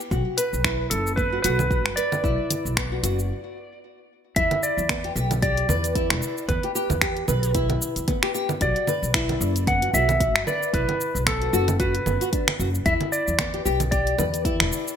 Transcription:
0.00 shaker
0.11 upright bass B1, nylon-string guitar F#4, kick, shaker
0.37 electric slide guitar B4, nylon-string guitar B4, closed hi-hat, shaker
0.53 upright bass B1, shaker
0.64 nylon-string guitar E4, finger snap, kick, shaker
0.90 upright bass F#1, electric slide guitar A4, closed hi-hat, shaker
1.07 shaker
1.16 nylon-string guitar B3, electric slide guitar B4, kick, shaker
1.32 nylon-string guitar F#4
1.42 upright bass B1, nylon-string guitar F#4, electric slide guitar B4, closed hi-hat, shaker
1.59 low conga, shaker
1.71 nylon-string guitar F#4, kick, shaker
1.86 upright bass F#1, finger snap
1.96 nylon-string guitar B4, electric slide guitar D5, closed hi-hat, shaker
2.12 low conga, shaker
2.24 upright bass B1, nylon-string guitar E4, kick, shaker
2.50 closed hi-hat, low conga, shaker
2.65 upright bass B1, shaker
2.77 nylon-string guitar B3, finger snap, kick, shaker
2.92 nylon-string guitar F#4
3.03 upright bass F#1, nylon-string guitar F#4, closed hi-hat, shaker
3.19 shaker
4.36 upright bass E2, nylon-string guitar E4, electric slide guitar E5, kick, closed hi-hat, shaker
4.51 closed hi-hat, low conga
4.63 electric slide guitar D5, shaker
4.77 upright bass E2, shaker
4.89 nylon-string guitar B3, finger snap, kick, closed hi-hat, low conga, shaker
5.04 nylon-string guitar G4, closed hi-hat
5.15 upright bass B1, nylon-string guitar G4, shaker
5.31 closed hi-hat, low conga, shaker
5.42 nylon-string guitar G4, electric slide guitar D5, kick, closed hi-hat, shaker
5.57 closed hi-hat
5.69 upright bass E2, nylon-string guitar B4, low conga, shaker
5.84 closed hi-hat, shaker
5.95 nylon-string guitar E4, kick, closed hi-hat, shaker
6.10 upright bass E1, finger snap, closed hi-hat, low conga
6.22 shaker
6.38 shaker
6.49 upright bass E2, nylon-string guitar B3, electric slide guitar B4, kick, closed hi-hat, low conga, shaker
6.63 nylon-string guitar G4, closed hi-hat
6.75 nylon-string guitar G4, shaker
6.90 upright bass E2, low conga, shaker
7.01 nylon-string guitar G4, finger snap, kick, closed hi-hat, shaker
7.17 closed hi-hat
7.28 upright bass B1, nylon-string guitar B4, low conga, shaker
7.43 closed hi-hat, shaker
7.55 nylon-string guitar E4, kick, closed hi-hat, shaker
7.70 closed hi-hat, low conga
7.82 shaker
7.96 upright bass E2, closed hi-hat, shaker
8.08 nylon-string guitar B3, kick, closed hi-hat, low conga, shaker
8.23 nylon-string guitar G4, finger snap, closed hi-hat
8.34 nylon-string guitar G4, shaker
8.49 low conga, shaker
8.61 upright bass B1, nylon-string guitar F#4, electric slide guitar D5, kick, closed hi-hat, shaker
8.76 closed hi-hat
8.87 nylon-string guitar B4, low conga, shaker
9.02 upright bass B1, shaker
9.14 nylon-string guitar E4, finger snap, kick, closed hi-hat, shaker
9.29 closed hi-hat, low conga
9.41 upright bass F#1, shaker
9.56 closed hi-hat, shaker
9.67 nylon-string guitar B3, electric slide guitar F#5, kick, closed hi-hat, low conga, shaker
9.82 nylon-string guitar F#4, closed hi-hat
9.93 upright bass B1, nylon-string guitar F#4, electric slide guitar E5, shaker
10.09 closed hi-hat, low conga, shaker
10.20 nylon-string guitar F#4, kick, closed hi-hat, shaker
10.35 upright bass F#1, finger snap, closed hi-hat
10.47 nylon-string guitar B4, electric slide guitar D5, low conga, shaker
10.63 shaker
10.74 upright bass B1, nylon-string guitar E4, electric slide guitar B4, kick, closed hi-hat, shaker
10.89 closed hi-hat, low conga
11.01 shaker
11.15 upright bass B1, shaker
11.27 nylon-string guitar B3, electric slide guitar A4, finger snap, kick, closed hi-hat, low conga, shaker
11.42 nylon-string guitar F#4, closed hi-hat
11.53 upright bass F#1, nylon-string guitar F#4, shaker
11.68 closed hi-hat, low conga, shaker
11.80 nylon-string guitar F#4, electric slide guitar B4, kick, closed hi-hat, shaker
11.95 closed hi-hat
12.06 upright bass F#1, nylon-string guitar B3, low conga, shaker
12.21 nylon-string guitar F#4, closed hi-hat, shaker
12.33 nylon-string guitar D4, kick, closed hi-hat, shaker
12.48 finger snap, closed hi-hat, low conga
12.59 upright bass F#1, nylon-string guitar F#4, shaker
12.75 shaker
12.86 upright bass E2, nylon-string guitar E4, electric slide guitar E5, kick, closed hi-hat, shaker
13.01 closed hi-hat, low conga
13.12 electric slide guitar D5, shaker
13.28 upright bass E2, shaker
13.39 nylon-string guitar B3, finger snap, kick, closed hi-hat, low conga, shaker
13.54 nylon-string guitar G4, closed hi-hat
13.65 upright bass B1, nylon-string guitar G4, shaker
13.80 closed hi-hat, low conga, shaker
13.91 nylon-string guitar G4, electric slide guitar D5, kick, closed hi-hat, shaker
14.07 closed hi-hat
14.19 upright bass E2, nylon-string guitar B4, low conga, shaker
14.34 closed hi-hat, shaker
14.45 nylon-string guitar E4, kick, closed hi-hat, shaker
14.60 upright bass E1, finger snap, closed hi-hat, low conga
14.73 shaker
14.88 shaker

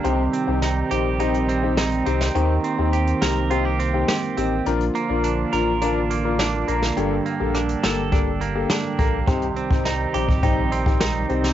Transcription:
Already playing: clean electric guitar A#3 D4 A4, analog synth pad G4
0.04 sub bass C2, clean electric guitar C3, analog synth pad D#3 G3 C4, grand piano C4 D#4 G4, closed hi-hat
0.33 clean electric guitar C4, closed hi-hat
0.47 sub bass C2, grand piano C4 D#4 G4
0.62 clean electric guitar D#4, snare, closed hi-hat
0.91 sub bass A#1, grand piano C4 D#4 G4, clean electric guitar G4, closed hi-hat
1.20 grand piano C4 D#4 G4, clean electric guitar D#4, closed hi-hat
1.34 closed hi-hat
1.49 clean electric guitar C4, closed hi-hat
1.63 grand piano C4 D#4 G4
1.78 clean electric guitar D#4, cross-stick, snare, closed hi-hat
1.92 closed hi-hat
2.06 sub bass C2, grand piano C4 D#4 G4, clean electric guitar C4, closed hi-hat
2.21 snare
2.35 sub bass D#2, clean electric guitar D#3, analog synth pad D#3 A#3, grand piano C4 D#4 G4, closed hi-hat
2.64 clean electric guitar C4, closed hi-hat
2.78 sub bass D#2, grand piano C4 D#4 G4
2.93 clean electric guitar G4, closed hi-hat
3.07 closed hi-hat
3.22 sub bass C2, grand piano C4 D#4 G4, clean electric guitar A#4, snare, closed hi-hat
3.50 grand piano C4 D#4 G4, clean electric guitar F4, closed hi-hat
3.65 clean electric guitar G4
3.80 clean electric guitar C4, closed hi-hat
3.94 grand piano C4 D#4 G4
4.08 clean electric guitar G4, cross-stick, snare, closed hi-hat
4.23 closed hi-hat
4.37 sub bass A1, grand piano C4 D#4 G4, clean electric guitar C4, closed hi-hat
4.66 sub bass A#1, analog synth pad D3 F3 F4, grand piano D4 F4 A#4, closed hi-hat
4.80 closed hi-hat
4.95 clean electric guitar A#3, closed hi-hat
5.09 sub bass A#1, grand piano D4 F4 A#4
5.24 clean electric guitar D4, closed hi-hat
5.52 sub bass A1, grand piano D4 F4 A#4, clean electric guitar A#4, closed hi-hat
5.81 grand piano D4 F4 A#4, clean electric guitar D4, closed hi-hat
6.10 clean electric guitar A#3, closed hi-hat
6.24 grand piano D4 F4 A#4
6.39 clean electric guitar D4, snare, closed hi-hat
6.68 sub bass A#1, clean electric guitar A#3, grand piano D4 F4 A#4, closed hi-hat
6.82 snare
6.97 sub bass G1, clean electric guitar G2, grand piano A#3 G4 A4, analog synth pad G4 A4, closed hi-hat
7.26 clean electric guitar A#3, closed hi-hat
7.40 sub bass A#1, grand piano A#3 G4 A4
7.54 clean electric guitar D4, cross-stick, closed hi-hat
7.69 closed hi-hat
7.83 sub bass G1, grand piano A#3 G4 A4, clean electric guitar A4, snare, closed hi-hat
8.12 grand piano A#3 G4 A4, clean electric guitar D4, kick, closed hi-hat
8.41 clean electric guitar A#3, closed hi-hat
8.55 grand piano A#3 G4 A4
8.70 clean electric guitar D4, cross-stick, snare, closed hi-hat
8.98 sub bass A#1, grand piano A#3 G4 A4, clean electric guitar A#3, kick, closed hi-hat
9.27 sub bass C2, clean electric guitar C3, analog synth pad D#3 G3 C4, grand piano C4 D#4 G4, kick, closed hi-hat
9.42 closed hi-hat
9.56 clean electric guitar C4, closed hi-hat
9.70 sub bass C2, grand piano C4 D#4 G4, kick
9.85 clean electric guitar D#4, snare, closed hi-hat
10.14 sub bass A#1, grand piano C4 D#4 G4, clean electric guitar G4, closed hi-hat
10.29 kick
10.43 grand piano C4 D#4 G4, clean electric guitar D#4, kick, closed hi-hat
10.72 clean electric guitar C4, closed hi-hat
10.86 grand piano C4 D#4 G4, kick
11.01 clean electric guitar D#4, cross-stick, snare, closed hi-hat
11.29 sub bass C2, grand piano C4 D#4 G4, clean electric guitar C4, closed hi-hat
11.44 snare

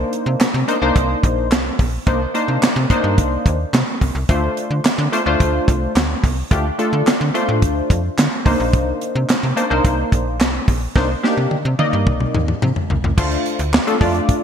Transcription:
Already playing: analog polysynth A#3 D4 D#4 C5
0.13 closed hi-hat
0.26 fm bass C3
0.40 fm bass C3, snare, clap, closed hi-hat
0.54 fm bass C3
0.68 analog polysynth A#3 D4 D#4 C5, closed hi-hat
0.82 fm bass C2, analog polysynth A#3 D4 D#4 C5
0.96 fm bass C2, kick, closed hi-hat
1.23 fm bass A#1, kick, closed hi-hat
1.51 fm bass C2, snare, clap, closed hi-hat
1.79 fm bass A#1, kick, open hi-hat
2.06 fm bass C2, analog polysynth A#3 D4 D#4 C5, kick, closed hi-hat
2.34 analog polysynth A#3 D4 D#4 C5, closed hi-hat
2.48 fm bass C3
2.62 fm bass C3, snare, clap, closed hi-hat
2.76 fm bass C3
2.90 analog polysynth A#3 D4 D#4 C5, kick, closed hi-hat
3.04 fm bass G2
3.18 fm bass C2, kick, closed hi-hat
3.46 fm bass D#2, kick, closed hi-hat
3.73 fm bass C3, snare, clap, closed hi-hat
4.01 fm bass C2, kick, open hi-hat
4.15 fm bass C2
4.29 fm bass D2, analog polysynth A3 D4 F4 C5, kick, closed hi-hat
4.57 closed hi-hat
4.71 fm bass D3
4.84 fm bass D3, snare, clap, closed hi-hat
4.98 fm bass D3
5.12 analog polysynth A3 D4 F4 C5, closed hi-hat
5.26 fm bass D2, analog polysynth A3 D4 F4 C5
5.40 fm bass D2, kick, closed hi-hat
5.68 fm bass C2, kick, closed hi-hat
5.96 fm bass D2, snare, clap, closed hi-hat
6.24 fm bass C2, kick, open hi-hat
6.51 fm bass D2, analog polysynth A3 D4 F4 G4, kick, closed hi-hat
6.78 analog polysynth A3 D4 F4 A4, closed hi-hat
6.93 fm bass D3
7.07 fm bass D3, snare, clap, closed hi-hat
7.21 fm bass D3
7.34 analog polysynth A3 D4 F4 C5, closed hi-hat
7.49 fm bass A2
7.62 fm bass D2, kick, closed hi-hat
7.90 fm bass F2, kick, closed hi-hat
8.18 fm bass D3, snare, clap, closed hi-hat
8.45 fm bass C2, analog polysynth A#3 D4 D#4 C5, kick, open hi-hat
8.60 fm bass A#1
8.73 fm bass C2, kick, closed hi-hat
9.01 closed hi-hat
9.15 fm bass C3
9.29 fm bass C3, snare, clap, closed hi-hat
9.43 fm bass C3
9.56 analog polysynth A#3 D4 D#4 C5, closed hi-hat
9.70 fm bass C2, analog polysynth A#3 D4 D#4 C5
9.85 fm bass C2, kick, closed hi-hat
10.12 fm bass A#1, kick, closed hi-hat
10.40 fm bass C2, snare, clap, closed hi-hat
10.68 fm bass A#1, kick, open hi-hat
10.95 fm bass C2, analog polysynth A#3 D4 D#4 C5, kick, snare
11.23 analog polysynth A#3 D4 D#4 G4, snare
11.37 fm bass C3
11.51 fm bass C3, high tom
11.65 fm bass C3
11.79 analog polysynth A#3 D#4 D5 D#5, high tom
11.93 fm bass G2
12.07 fm bass C2, kick, mid tom
12.20 mid tom
12.35 fm bass D#2, mid tom
12.48 mid tom
12.62 fm bass C3, mid tom
12.76 floor tom
12.90 fm bass C2, floor tom
13.04 fm bass C2, floor tom
13.17 fm bass D2, analog polysynth A3 D4 F4 C5, kick, crash
13.31 closed hi-hat
13.46 closed hi-hat
13.59 fm bass D2, closed hi-hat
13.74 snare, clap
13.87 analog polysynth A3 D4 F4 A4, closed hi-hat
14.01 fm bass F2, analog polysynth A3 D4 F4 D5, kick, open hi-hat
14.15 closed hi-hat
14.29 kick, closed hi-hat

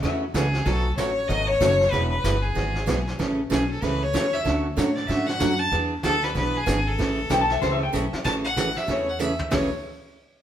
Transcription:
0.02 upright bass E2, steel-string acoustic guitar C#3 E3 A3 C#4 F#4, electric slide guitar E5, brush sweep, kick, snare
0.34 upright bass C#2, steel-string acoustic guitar C#3 E3 A3 C#4 F#4, fiddle G#4, kick, snare, hi-hat pedal
0.53 snare
0.66 upright bass B1, steel-string acoustic guitar B2 F#3 A3 D#4 F#4, fiddle A4, brush sweep, kick, snare
0.97 upright bass A1, steel-string acoustic guitar B2 F#3 A3 D#4 F#4, fiddle C#5, kick, snare, hi-hat pedal
1.28 upright bass G#1, steel-string acoustic guitar B2 F#3 A3 D#4 F#4, fiddle D#5, brush sweep, kick, snare
1.48 fiddle C#5
1.60 upright bass F#1, steel-string acoustic guitar B2 F#3 A3 D#4 F#4, kick, snare, hi-hat pedal
1.80 snare
1.91 upright bass E1, steel-string acoustic guitar E3 G#3 B3 E4 G#4, fiddle B4, brush sweep, kick, snare
2.10 fiddle B4
2.24 upright bass G1, steel-string acoustic guitar E3 G#3 B3 E4 G#4, kick, snare, hi-hat pedal
2.42 fiddle G#4
2.55 upright bass G#1, steel-string acoustic guitar E3 G#3 B3 E4 G#4, brush sweep, kick, snare
2.75 snare
2.86 upright bass B1, steel-string acoustic guitar E3 G#3 B3 E4 G#4, kick, snare, hi-hat pedal
3.07 snare
3.19 upright bass A1, steel-string acoustic guitar C#3 E3 A3 C#4 G#4, brush sweep, kick, snare
3.50 upright bass B1, steel-string acoustic guitar C#3 E3 A3 C#4 G#4, fiddle G#4, kick, snare, hi-hat pedal
3.71 fiddle A4
3.82 upright bass C#2, steel-string acoustic guitar C#3 E3 A3 C#4 G#4, fiddle B4, brush sweep, kick, snare
4.03 fiddle C#5
4.13 upright bass E2, steel-string acoustic guitar C#3 E3 A3 C#4 G#4, kick, snare, hi-hat pedal
4.33 fiddle E5, snare
4.45 upright bass D2, steel-string acoustic guitar D3 F#3 A3 C#4 F#4, brush sweep, kick, snare
4.76 upright bass A2, steel-string acoustic guitar D3 F#3 A3 C#4 F#4, fiddle C#5, kick, snare, hi-hat pedal
4.96 fiddle D5, snare
5.07 upright bass G#2, steel-string acoustic guitar D3 F#3 A3 C#4 F#4, fiddle E5, brush sweep, kick, snare
5.26 fiddle F#5, snare
5.40 upright bass F#2, steel-string acoustic guitar D3 F#3 A3 C#4 F#4, kick, snare, hi-hat pedal
5.59 fiddle A5
5.72 upright bass E2, steel-string acoustic guitar E3 B3 D4 G#4, brush sweep, kick, snare
6.03 upright bass D2, steel-string acoustic guitar E3 B3 D4 G#4, fiddle A4, kick, snare, hi-hat pedal
6.23 fiddle B4, snare
6.35 upright bass B1, steel-string acoustic guitar E3 B3 D4 G#4, fiddle B4, brush sweep, kick, snare
6.57 fiddle G#4
6.66 upright bass G#1, steel-string acoustic guitar E3 B3 D4 G#4, kick, snare, hi-hat pedal
6.87 fiddle A4
6.98 upright bass A1, steel-string acoustic guitar C#3 E3 A3 C#4 G#4, brush sweep, kick, snare
7.29 upright bass B1, steel-string acoustic guitar C#3 E3 A3 C#4 G#4, electric slide guitar G5, kick, snare, hi-hat pedal
7.41 electric slide guitar A5
7.50 electric slide guitar E5, snare
7.62 upright bass C#2, steel-string acoustic guitar C#3 E3 A3 C#4 G#4, electric slide guitar C5, brush sweep, kick, snare
7.72 electric slide guitar E5
7.83 electric slide guitar G5
7.93 upright bass B1, steel-string acoustic guitar C#3 E3 A3 C#4 G#4, electric slide guitar E5, hi-hat pedal
8.13 muted upright bass stroke, snare
8.24 upright bass A1, steel-string acoustic guitar C#3 E3 A3 C#4 G#4, fiddle A5, brush sweep, kick, snare
8.44 fiddle F#5
8.57 steel-string acoustic guitar C#3 E3 A3 C#4 G#4, kick, snare, hi-hat pedal
8.76 fiddle E5, snare
8.88 upright bass E2, steel-string acoustic guitar C#3 E3 A3 C#4 G#4, fiddle C#5, brush sweep, kick, snare
9.09 fiddle F#5
9.19 steel-string acoustic guitar C#3 E3 A3 C#4 G#4, fiddle E5, hi-hat pedal
9.39 floor tom
9.51 upright bass A1, steel-string acoustic guitar A2 C#3 E3 A3 C#4 G#4, fiddle C#5, snare, floor tom, open hi-hat

